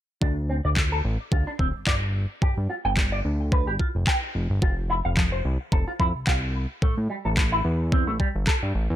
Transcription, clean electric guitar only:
0, 0, Header, 1, 2, 480
1, 0, Start_track
1, 0, Key_signature, -1, "minor"
1, 0, Tempo, 550459
1, 191, Time_signature, 4, 2, 24, 8
1, 7812, End_track
2, 0, Start_track
2, 0, Title_t, "Clean electric guitar"
2, 0, Program_c, 0, 27
2, 189, Note_on_c, 0, 62, 77
2, 290, Note_off_c, 0, 62, 0
2, 431, Note_on_c, 0, 60, 65
2, 471, Note_off_c, 0, 60, 0
2, 565, Note_on_c, 0, 74, 69
2, 597, Note_off_c, 0, 74, 0
2, 671, Note_on_c, 0, 50, 77
2, 711, Note_off_c, 0, 50, 0
2, 804, Note_on_c, 0, 69, 91
2, 857, Note_off_c, 0, 69, 0
2, 1149, Note_on_c, 0, 65, 73
2, 1251, Note_off_c, 0, 65, 0
2, 1284, Note_on_c, 0, 62, 88
2, 1316, Note_off_c, 0, 62, 0
2, 1389, Note_on_c, 0, 60, 84
2, 1457, Note_off_c, 0, 60, 0
2, 1630, Note_on_c, 0, 74, 73
2, 1697, Note_off_c, 0, 74, 0
2, 2109, Note_on_c, 0, 67, 75
2, 2210, Note_off_c, 0, 67, 0
2, 2350, Note_on_c, 0, 65, 70
2, 2391, Note_off_c, 0, 65, 0
2, 2484, Note_on_c, 0, 79, 70
2, 2516, Note_off_c, 0, 79, 0
2, 2589, Note_on_c, 0, 55, 76
2, 2630, Note_off_c, 0, 55, 0
2, 2723, Note_on_c, 0, 74, 96
2, 2777, Note_off_c, 0, 74, 0
2, 3070, Note_on_c, 0, 71, 71
2, 3171, Note_off_c, 0, 71, 0
2, 3204, Note_on_c, 0, 67, 93
2, 3236, Note_off_c, 0, 67, 0
2, 3310, Note_on_c, 0, 65, 90
2, 3378, Note_off_c, 0, 65, 0
2, 3552, Note_on_c, 0, 79, 77
2, 3618, Note_off_c, 0, 79, 0
2, 4030, Note_on_c, 0, 65, 74
2, 4131, Note_off_c, 0, 65, 0
2, 4269, Note_on_c, 0, 64, 71
2, 4310, Note_off_c, 0, 64, 0
2, 4403, Note_on_c, 0, 77, 71
2, 4436, Note_off_c, 0, 77, 0
2, 4508, Note_on_c, 0, 53, 77
2, 4549, Note_off_c, 0, 53, 0
2, 4641, Note_on_c, 0, 72, 93
2, 4696, Note_off_c, 0, 72, 0
2, 4988, Note_on_c, 0, 69, 74
2, 5090, Note_off_c, 0, 69, 0
2, 5124, Note_on_c, 0, 65, 87
2, 5156, Note_off_c, 0, 65, 0
2, 5229, Note_on_c, 0, 64, 95
2, 5297, Note_off_c, 0, 64, 0
2, 5468, Note_on_c, 0, 77, 76
2, 5536, Note_off_c, 0, 77, 0
2, 5949, Note_on_c, 0, 57, 74
2, 6051, Note_off_c, 0, 57, 0
2, 6188, Note_on_c, 0, 55, 67
2, 6230, Note_off_c, 0, 55, 0
2, 6322, Note_on_c, 0, 69, 74
2, 6355, Note_off_c, 0, 69, 0
2, 6426, Note_on_c, 0, 45, 77
2, 6468, Note_off_c, 0, 45, 0
2, 6560, Note_on_c, 0, 64, 92
2, 6616, Note_off_c, 0, 64, 0
2, 6907, Note_on_c, 0, 60, 75
2, 7010, Note_off_c, 0, 60, 0
2, 7040, Note_on_c, 0, 57, 91
2, 7074, Note_off_c, 0, 57, 0
2, 7148, Note_on_c, 0, 55, 95
2, 7216, Note_off_c, 0, 55, 0
2, 7387, Note_on_c, 0, 69, 75
2, 7456, Note_off_c, 0, 69, 0
2, 7812, End_track
0, 0, End_of_file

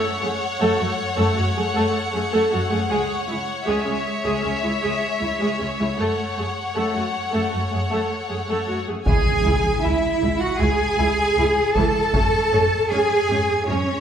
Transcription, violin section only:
0, 0, Header, 1, 2, 480
1, 0, Start_track
1, 0, Key_signature, 4, "minor"
1, 0, Tempo, 769231
1, 1813, Time_signature, 4, 2, 24, 8
1, 8737, End_track
2, 0, Start_track
2, 0, Title_t, "Violin section"
2, 0, Program_c, 0, 48
2, 0, Note_on_c, 0, 73, 55
2, 0, Note_on_c, 0, 78, 51
2, 1792, Note_off_c, 0, 73, 0
2, 1816, Note_on_c, 0, 73, 45
2, 2270, Note_off_c, 0, 78, 0
2, 2294, Note_on_c, 0, 76, 41
2, 3734, Note_off_c, 0, 76, 0
2, 3738, Note_on_c, 0, 78, 37
2, 5505, Note_off_c, 0, 73, 0
2, 5506, Note_off_c, 0, 78, 0
2, 5654, Note_on_c, 0, 80, 59
2, 6109, Note_off_c, 0, 80, 0
2, 6130, Note_on_c, 0, 76, 51
2, 6490, Note_on_c, 0, 78, 51
2, 6492, Note_off_c, 0, 76, 0
2, 6608, Note_on_c, 0, 80, 62
2, 6612, Note_off_c, 0, 78, 0
2, 7326, Note_on_c, 0, 81, 59
2, 7331, Note_off_c, 0, 80, 0
2, 8035, Note_off_c, 0, 81, 0
2, 8052, Note_on_c, 0, 80, 58
2, 8523, Note_off_c, 0, 80, 0
2, 8533, Note_on_c, 0, 73, 55
2, 8737, Note_off_c, 0, 73, 0
2, 8737, End_track
0, 0, End_of_file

